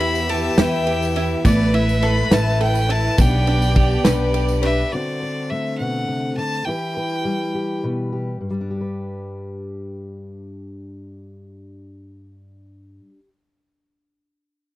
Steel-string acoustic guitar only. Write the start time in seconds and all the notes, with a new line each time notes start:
4.93 D3 C4 F#4 C5
5.23 C5
5.51 A3
5.80 B2
6.08 C3
6.37 D3
6.66 E3 E4 G4 B4
6.97 B4
7.25 G3
7.55 G4
7.84 B2 B4
8.12 G4
8.41 G2
8.50 G3
8.61 D4
8.71 G4
8.81 B4